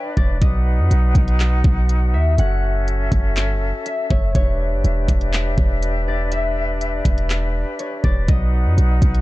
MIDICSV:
0, 0, Header, 1, 5, 480
1, 0, Start_track
1, 0, Tempo, 491803
1, 406, Time_signature, 4, 2, 24, 8
1, 8992, End_track
2, 0, Start_track
2, 0, Title_t, "Harp"
2, 0, Program_c, 0, 46
2, 0, Note_on_c, 0, 73, 75
2, 0, Note_on_c, 0, 76, 97
2, 163, Note_on_c, 0, 74, 90
2, 170, Note_off_c, 0, 76, 0
2, 222, Note_off_c, 0, 73, 0
2, 407, Note_on_c, 0, 75, 96
2, 466, Note_off_c, 0, 74, 0
2, 2086, Note_on_c, 0, 76, 75
2, 2145, Note_off_c, 0, 75, 0
2, 2332, Note_on_c, 0, 78, 101
2, 3761, Note_off_c, 0, 76, 0
2, 3765, Note_on_c, 0, 76, 80
2, 3901, Note_off_c, 0, 78, 0
2, 4008, Note_on_c, 0, 73, 77
2, 4246, Note_off_c, 0, 73, 0
2, 4250, Note_on_c, 0, 73, 105
2, 5447, Note_off_c, 0, 76, 0
2, 5931, Note_on_c, 0, 74, 84
2, 5990, Note_off_c, 0, 73, 0
2, 6168, Note_on_c, 0, 76, 92
2, 7607, Note_on_c, 0, 73, 75
2, 7666, Note_off_c, 0, 74, 0
2, 7845, Note_on_c, 0, 74, 87
2, 7850, Note_off_c, 0, 76, 0
2, 7903, Note_off_c, 0, 73, 0
2, 8087, Note_on_c, 0, 75, 99
2, 8145, Note_off_c, 0, 74, 0
2, 8992, Note_off_c, 0, 75, 0
2, 8992, End_track
3, 0, Start_track
3, 0, Title_t, "Flute section"
3, 0, Program_c, 1, 73
3, 0, Note_on_c, 1, 62, 75
3, 0, Note_on_c, 1, 71, 71
3, 0, Note_on_c, 1, 76, 71
3, 0, Note_on_c, 1, 79, 85
3, 115, Note_off_c, 1, 79, 0
3, 367, Note_off_c, 1, 76, 0
3, 368, Note_off_c, 1, 62, 0
3, 408, Note_on_c, 1, 78, 85
3, 409, Note_on_c, 1, 63, 81
3, 409, Note_on_c, 1, 66, 70
3, 2101, Note_off_c, 1, 71, 0
3, 2308, Note_off_c, 1, 63, 0
3, 2308, Note_off_c, 1, 78, 0
3, 2327, Note_on_c, 1, 61, 79
3, 2327, Note_on_c, 1, 69, 71
3, 2328, Note_on_c, 1, 76, 86
3, 3976, Note_off_c, 1, 66, 0
3, 4009, Note_off_c, 1, 61, 0
3, 4227, Note_off_c, 1, 69, 0
3, 4227, Note_off_c, 1, 76, 0
3, 4244, Note_on_c, 1, 71, 71
3, 4245, Note_on_c, 1, 62, 75
3, 4245, Note_on_c, 1, 67, 70
3, 4245, Note_on_c, 1, 76, 86
3, 7831, Note_off_c, 1, 76, 0
3, 8047, Note_off_c, 1, 62, 0
3, 8047, Note_off_c, 1, 67, 0
3, 8087, Note_on_c, 1, 63, 77
3, 8087, Note_on_c, 1, 66, 71
3, 8087, Note_on_c, 1, 78, 86
3, 8992, Note_off_c, 1, 63, 0
3, 8992, Note_off_c, 1, 66, 0
3, 8992, Note_off_c, 1, 71, 0
3, 8992, Note_off_c, 1, 78, 0
3, 8992, End_track
4, 0, Start_track
4, 0, Title_t, "808-style bass"
4, 0, Program_c, 2, 38
4, 167, Note_on_c, 2, 28, 106
4, 397, Note_off_c, 2, 28, 0
4, 407, Note_on_c, 2, 35, 105
4, 766, Note_on_c, 2, 42, 98
4, 781, Note_off_c, 2, 35, 0
4, 880, Note_off_c, 2, 42, 0
4, 887, Note_on_c, 2, 35, 107
4, 1117, Note_off_c, 2, 35, 0
4, 1123, Note_on_c, 2, 35, 107
4, 1585, Note_off_c, 2, 35, 0
4, 1603, Note_on_c, 2, 35, 102
4, 2086, Note_on_c, 2, 39, 101
4, 2101, Note_off_c, 2, 35, 0
4, 2314, Note_off_c, 2, 39, 0
4, 2326, Note_on_c, 2, 30, 113
4, 3017, Note_off_c, 2, 30, 0
4, 3043, Note_on_c, 2, 30, 110
4, 3286, Note_on_c, 2, 31, 100
4, 3301, Note_off_c, 2, 30, 0
4, 3466, Note_on_c, 2, 30, 95
4, 3480, Note_off_c, 2, 31, 0
4, 3637, Note_off_c, 2, 30, 0
4, 4006, Note_on_c, 2, 30, 97
4, 4236, Note_off_c, 2, 30, 0
4, 4245, Note_on_c, 2, 28, 104
4, 4605, Note_on_c, 2, 30, 103
4, 4620, Note_off_c, 2, 28, 0
4, 4719, Note_off_c, 2, 30, 0
4, 4727, Note_on_c, 2, 28, 105
4, 4957, Note_off_c, 2, 28, 0
4, 4963, Note_on_c, 2, 28, 105
4, 5425, Note_off_c, 2, 28, 0
4, 5443, Note_on_c, 2, 28, 99
4, 6845, Note_off_c, 2, 28, 0
4, 6882, Note_on_c, 2, 28, 104
4, 7460, Note_off_c, 2, 28, 0
4, 7845, Note_on_c, 2, 28, 107
4, 8076, Note_off_c, 2, 28, 0
4, 8086, Note_on_c, 2, 35, 106
4, 8447, Note_on_c, 2, 42, 100
4, 8462, Note_off_c, 2, 35, 0
4, 8560, Note_off_c, 2, 42, 0
4, 8565, Note_on_c, 2, 35, 109
4, 8796, Note_off_c, 2, 35, 0
4, 8803, Note_on_c, 2, 35, 106
4, 8992, Note_off_c, 2, 35, 0
4, 8992, End_track
5, 0, Start_track
5, 0, Title_t, "Drums"
5, 166, Note_on_c, 9, 36, 93
5, 264, Note_off_c, 9, 36, 0
5, 406, Note_on_c, 9, 36, 108
5, 406, Note_on_c, 9, 42, 70
5, 504, Note_off_c, 9, 36, 0
5, 504, Note_off_c, 9, 42, 0
5, 889, Note_on_c, 9, 42, 79
5, 987, Note_off_c, 9, 42, 0
5, 1123, Note_on_c, 9, 36, 102
5, 1126, Note_on_c, 9, 42, 70
5, 1221, Note_off_c, 9, 36, 0
5, 1224, Note_off_c, 9, 42, 0
5, 1247, Note_on_c, 9, 42, 39
5, 1344, Note_off_c, 9, 42, 0
5, 1367, Note_on_c, 9, 39, 119
5, 1368, Note_on_c, 9, 42, 77
5, 1464, Note_off_c, 9, 39, 0
5, 1465, Note_off_c, 9, 42, 0
5, 1604, Note_on_c, 9, 36, 97
5, 1701, Note_off_c, 9, 36, 0
5, 1846, Note_on_c, 9, 42, 68
5, 1944, Note_off_c, 9, 42, 0
5, 2326, Note_on_c, 9, 42, 66
5, 2424, Note_off_c, 9, 42, 0
5, 2809, Note_on_c, 9, 42, 73
5, 2906, Note_off_c, 9, 42, 0
5, 3043, Note_on_c, 9, 36, 96
5, 3044, Note_on_c, 9, 42, 72
5, 3140, Note_off_c, 9, 36, 0
5, 3141, Note_off_c, 9, 42, 0
5, 3286, Note_on_c, 9, 39, 115
5, 3287, Note_on_c, 9, 42, 73
5, 3383, Note_off_c, 9, 39, 0
5, 3384, Note_off_c, 9, 42, 0
5, 3766, Note_on_c, 9, 42, 71
5, 3864, Note_off_c, 9, 42, 0
5, 4006, Note_on_c, 9, 36, 95
5, 4104, Note_off_c, 9, 36, 0
5, 4246, Note_on_c, 9, 36, 111
5, 4246, Note_on_c, 9, 42, 71
5, 4343, Note_off_c, 9, 36, 0
5, 4343, Note_off_c, 9, 42, 0
5, 4728, Note_on_c, 9, 42, 76
5, 4826, Note_off_c, 9, 42, 0
5, 4963, Note_on_c, 9, 36, 99
5, 4966, Note_on_c, 9, 42, 74
5, 5060, Note_off_c, 9, 36, 0
5, 5063, Note_off_c, 9, 42, 0
5, 5085, Note_on_c, 9, 42, 41
5, 5183, Note_off_c, 9, 42, 0
5, 5206, Note_on_c, 9, 39, 117
5, 5207, Note_on_c, 9, 42, 76
5, 5304, Note_off_c, 9, 39, 0
5, 5305, Note_off_c, 9, 42, 0
5, 5443, Note_on_c, 9, 36, 102
5, 5541, Note_off_c, 9, 36, 0
5, 5685, Note_on_c, 9, 42, 69
5, 5783, Note_off_c, 9, 42, 0
5, 6165, Note_on_c, 9, 42, 72
5, 6262, Note_off_c, 9, 42, 0
5, 6648, Note_on_c, 9, 42, 79
5, 6746, Note_off_c, 9, 42, 0
5, 6882, Note_on_c, 9, 36, 98
5, 6885, Note_on_c, 9, 42, 76
5, 6980, Note_off_c, 9, 36, 0
5, 6982, Note_off_c, 9, 42, 0
5, 7005, Note_on_c, 9, 42, 40
5, 7103, Note_off_c, 9, 42, 0
5, 7126, Note_on_c, 9, 39, 118
5, 7127, Note_on_c, 9, 42, 73
5, 7224, Note_off_c, 9, 39, 0
5, 7225, Note_off_c, 9, 42, 0
5, 7605, Note_on_c, 9, 42, 68
5, 7703, Note_off_c, 9, 42, 0
5, 7846, Note_on_c, 9, 36, 93
5, 7944, Note_off_c, 9, 36, 0
5, 8085, Note_on_c, 9, 42, 72
5, 8086, Note_on_c, 9, 36, 110
5, 8183, Note_off_c, 9, 42, 0
5, 8184, Note_off_c, 9, 36, 0
5, 8569, Note_on_c, 9, 42, 78
5, 8667, Note_off_c, 9, 42, 0
5, 8803, Note_on_c, 9, 36, 96
5, 8806, Note_on_c, 9, 42, 74
5, 8901, Note_off_c, 9, 36, 0
5, 8904, Note_off_c, 9, 42, 0
5, 8926, Note_on_c, 9, 42, 39
5, 8992, Note_off_c, 9, 42, 0
5, 8992, End_track
0, 0, End_of_file